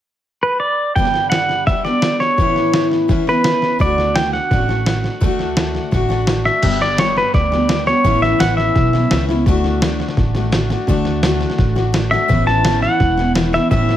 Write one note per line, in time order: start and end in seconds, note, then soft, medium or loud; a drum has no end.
0.43 0.61 B4 medium
0.60 0.95 D5 medium
0.95 1.67 G2 medium
0.95 1.67 D3 medium
0.95 1.66 G3 medium
0.95 1.68 B3 medium
0.95 1.68 D4 medium
0.95 1.68 G4 medium
0.95 1.29 G5 medium
0.95 kick medium
0.95 snare soft
1.05 snare soft
1.14 snare soft
1.30 1.66 F#5 medium
1.30 snare medium
1.30 hi-hat pedal medium
1.49 snare soft
1.67 1.85 G3 medium
1.67 1.85 B3 soft
1.67 1.84 D4 medium
1.67 1.84 G4 medium
1.67 1.83 E5 medium
1.67 kick medium
1.67 snare soft
1.85 2.38 G3 soft
1.85 2.38 B3 soft
1.85 2.38 D4 soft
1.85 2.38 G4 soft
1.85 2.21 D5 medium
1.85 snare soft
2.02 snare medium
2.02 hi-hat pedal medium
2.20 2.87 C#5 medium
2.20 snare soft
2.37 3.09 A2 medium
2.37 3.07 E3 medium
2.37 3.08 B3 medium
2.37 3.09 C#4 medium
2.37 3.09 E4 medium
2.37 kick medium
2.37 snare soft
2.56 snare soft
2.74 snare medium
2.74 hi-hat pedal medium
2.92 snare soft
3.08 3.26 E3 medium
3.08 3.27 B3 medium
3.08 3.27 C#4 medium
3.08 3.26 E4 medium
3.08 kick medium
3.08 snare soft
3.27 3.80 B3 soft
3.27 3.80 C#4 soft
3.27 3.80 E4 soft
3.27 3.77 B4 medium
3.27 snare soft
3.44 snare medium
3.44 hi-hat pedal medium
3.62 snare soft
3.79 4.35 D2 medium
3.79 4.50 D3 medium
3.79 4.50 A3 medium
3.79 4.52 D4 medium
3.79 4.52 F#4 medium
3.79 4.17 D5 medium
3.79 kick medium
3.79 snare soft
3.98 snare soft
4.16 4.33 G5 medium
4.16 snare loud
4.16 hi-hat pedal medium
4.33 6.24 F#5 medium
4.33 snare soft
4.51 5.06 A1 medium
4.51 4.68 D3 medium
4.51 4.69 A3 medium
4.51 4.68 D4 medium
4.51 4.67 F#4 medium
4.51 kick medium
4.51 snare soft
4.68 5.20 A3 soft
4.68 5.23 D4 soft
4.68 5.21 F#4 soft
4.68 snare soft
4.86 snare medium
4.86 hi-hat pedal medium
5.04 snare soft
5.21 5.76 D2 medium
5.21 5.90 D3 medium
5.21 5.91 A3 medium
5.21 5.92 D4 medium
5.21 5.93 F#4 medium
5.21 kick medium
5.21 snare soft
5.39 snare soft
5.57 snare loud
5.57 hi-hat pedal medium
5.75 snare soft
5.91 6.47 A1 medium
5.91 6.10 D3 medium
5.91 6.10 A3 medium
5.91 6.09 D4 medium
5.91 6.07 F#4 medium
5.91 kick medium
5.91 snare soft
6.09 6.63 A3 soft
6.09 6.62 D4 medium
6.09 6.62 F#4 medium
6.09 snare soft
6.27 snare medium
6.27 hi-hat pedal medium
6.45 6.82 E5 medium
6.45 snare soft
6.62 7.18 G1 medium
6.62 6.98 G2 medium
6.62 6.98 D3 medium
6.62 6.96 G3 medium
6.62 6.98 B3 medium
6.62 6.98 D4 medium
6.62 6.99 G4 medium
6.62 kick medium
6.62 snare soft
6.62 crash medium
6.81 6.99 D5 medium
6.81 snare soft
6.97 7.51 G3 medium
6.97 7.51 B3 medium
6.97 7.51 D4 medium
6.97 7.50 G4 medium
6.97 7.15 C#5 medium
6.97 snare loud
6.97 hi-hat pedal medium
7.17 7.34 B4 medium
7.17 snare soft
7.34 7.89 D2 medium
7.34 7.87 D5 medium
7.34 kick loud
7.34 snare soft
7.51 7.67 G3 soft
7.51 7.68 B3 soft
7.51 7.69 D4 soft
7.51 7.69 G4 soft
7.51 snare soft
7.68 7.87 G3 soft
7.68 7.87 B3 soft
7.68 7.86 D4 medium
7.68 7.85 G4 soft
7.68 snare medium
7.68 hi-hat pedal medium
7.86 8.04 G3 soft
7.86 8.04 B3 soft
7.86 8.04 D4 soft
7.86 8.04 G4 soft
7.86 8.20 C#5 medium
7.86 snare soft
8.04 8.32 A1 medium
8.04 8.40 A2 medium
8.04 8.38 E3 medium
8.04 8.39 B3 medium
8.04 8.40 C#4 medium
8.04 8.40 E4 medium
8.04 kick medium
8.04 snare soft
8.22 8.41 E5 medium
8.22 snare soft
8.39 8.70 A1 medium
8.39 8.93 E3 medium
8.39 8.93 B3 medium
8.39 8.93 C#4 medium
8.39 8.92 E4 medium
8.39 8.57 F#5 medium
8.39 snare medium
8.39 hi-hat pedal medium
8.57 9.24 E5 medium
8.57 snare soft
8.76 9.06 B1 medium
8.76 kick loud
8.76 snare soft
8.93 9.11 B3 soft
8.93 9.12 C#4 soft
8.93 9.11 E4 medium
8.93 snare soft
9.11 9.41 C#2 medium
9.11 9.29 E3 medium
9.11 9.29 B3 medium
9.11 9.29 C#4 medium
9.11 snare medium
9.11 hi-hat pedal medium
9.29 9.47 B3 soft
9.29 9.47 C#4 soft
9.29 9.47 E4 medium
9.29 snare soft
9.46 10.01 D2 medium
9.46 9.81 D3 medium
9.46 9.83 A3 medium
9.46 9.83 D4 medium
9.46 9.83 F#4 medium
9.46 kick loud
9.46 snare soft
9.64 snare soft
9.82 10.35 D3 medium
9.82 10.37 A3 medium
9.82 10.35 D4 medium
9.82 10.34 F#4 medium
9.82 snare loud
9.82 hi-hat pedal medium
10.00 snare soft
10.08 snare soft
10.17 10.72 A1 medium
10.17 kick loud
10.17 snare soft
10.35 10.51 A3 soft
10.35 10.52 D4 soft
10.35 10.53 F#4 medium
10.35 snare soft
10.52 10.70 D3 medium
10.52 10.70 A3 medium
10.52 10.70 D4 medium
10.52 10.69 F#4 medium
10.52 snare medium
10.52 hi-hat pedal medium
10.70 10.87 A3 soft
10.70 10.88 D4 soft
10.70 10.88 F#4 medium
10.70 snare soft
10.87 11.43 D2 medium
10.87 11.22 D3 medium
10.87 11.24 A3 medium
10.87 11.23 D4 medium
10.87 11.24 F#4 medium
10.87 kick medium
10.87 snare soft
11.05 snare soft
11.23 11.76 D3 medium
11.23 11.78 A3 medium
11.23 11.76 D4 medium
11.23 11.74 F#4 medium
11.23 snare medium
11.23 hi-hat pedal medium
11.41 snare soft
11.50 snare soft
11.58 12.14 A1 medium
11.58 kick medium
11.58 snare soft
11.75 11.93 A3 soft
11.75 11.93 D4 soft
11.75 11.94 F#4 medium
11.75 snare soft
11.93 12.11 D3 medium
11.93 12.12 A3 medium
11.93 12.12 D4 medium
11.93 12.10 F#4 medium
11.93 snare medium
11.93 hi-hat pedal medium
12.11 12.29 A3 soft
12.11 12.29 D4 soft
12.11 12.29 F#4 soft
12.11 12.47 E5 medium
12.11 snare soft
12.28 12.85 A1 medium
12.28 12.64 A2 medium
12.28 12.62 E3 medium
12.28 12.64 B3 medium
12.28 12.63 C#4 medium
12.28 12.64 E4 medium
12.28 kick loud
12.28 snare soft
12.47 12.82 A5 loud
12.47 snare soft
12.63 13.17 E3 medium
12.63 13.19 B3 medium
12.63 13.17 C#4 medium
12.63 13.16 E4 medium
12.63 snare loud
12.63 hi-hat pedal medium
12.82 13.32 F#5 medium
12.82 snare soft
13.00 13.55 E1 medium
13.00 kick loud
13.00 snare soft
13.17 13.35 B3 soft
13.17 13.36 C#4 soft
13.17 13.35 E4 soft
13.17 snare soft
13.35 13.53 E3 medium
13.35 13.54 B3 medium
13.35 13.53 C#4 medium
13.35 13.51 E4 medium
13.35 snare medium
13.35 hi-hat pedal medium
13.53 13.70 B3 soft
13.53 13.71 C#4 soft
13.53 13.71 E4 soft
13.53 13.70 E5 medium
13.53 snare soft
13.71 13.97 A1 medium
13.71 13.97 A2 medium
13.71 13.97 E3 medium
13.71 13.97 B3 medium
13.71 13.97 C#4 medium
13.71 13.97 E4 medium
13.71 13.97 E5 medium
13.71 kick medium
13.71 snare soft
13.89 snare soft